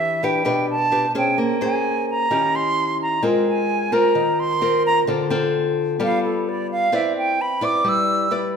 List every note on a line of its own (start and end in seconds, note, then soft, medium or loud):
0.00 0.43 E3 medium
0.00 0.19 D4 medium
0.00 0.19 G4 medium
0.00 0.19 B4 medium
0.00 0.26 E5 medium
0.23 0.42 D4 medium
0.23 0.42 G4 medium
0.23 0.42 B4 medium
0.23 0.70 G5 medium
0.45 1.35 B2 medium
0.45 0.75 D4 medium
0.45 0.75 G4 medium
0.45 0.75 B4 medium
0.70 1.12 A5 loud
0.91 1.05 D4 medium
0.91 1.05 G4 medium
0.91 1.05 B4 medium
1.15 1.57 C#4 medium
1.15 1.57 G#4 medium
1.15 1.58 C5 medium
1.15 1.38 G5 medium
1.38 2.28 A#3 medium
1.61 2.26 C#4 medium
1.61 2.27 G#4 medium
1.61 2.27 C5 medium
1.65 2.06 G#5 medium
2.10 2.57 A#5 medium
2.31 3.20 D#3 medium
2.31 3.19 C#4 medium
2.31 3.19 E4 medium
2.31 3.19 G4 medium
2.56 3.01 C6 loud
3.02 3.22 A#5 medium
3.23 4.13 G#3 medium
3.23 3.88 C4 medium
3.23 3.88 F4 medium
3.23 3.89 A#4 soft
3.48 3.95 G#5 medium
3.92 4.57 C4 medium
3.92 4.58 F4 medium
3.92 4.58 A#4 medium
3.92 4.41 A#5 medium
4.15 5.05 D#3 medium
4.40 4.85 C6 loud
4.61 5.04 C4 medium
4.61 5.04 F4 soft
4.61 5.04 A#4 medium
4.86 4.99 A#5 loud
5.07 5.97 D3 medium
5.07 5.27 C4 medium
5.07 5.27 F4 medium
5.07 5.27 A4 medium
5.30 5.96 C4 medium
5.30 5.96 F4 medium
5.30 5.96 A4 medium
5.99 6.89 G3 medium
5.99 6.88 B3 medium
5.99 6.88 F4 medium
5.99 6.89 A4 medium
5.99 6.23 F5 medium
6.24 6.50 A4 soft
6.49 6.70 D5 medium
6.71 6.97 F5 loud
6.92 7.82 C4 medium
6.92 7.38 E4 medium
6.92 7.38 B4 medium
6.92 7.38 D5 medium
6.92 7.17 E5 medium
7.18 7.43 G5 medium
7.41 7.66 B5 medium
7.61 8.27 E4 medium
7.61 8.27 B4 medium
7.61 8.27 D5 medium
7.61 7.90 D6 medium
7.84 8.57 G3 medium
7.89 8.32 E6 medium
8.31 8.57 E4 medium
8.31 8.57 B4 medium
8.31 8.57 D5 medium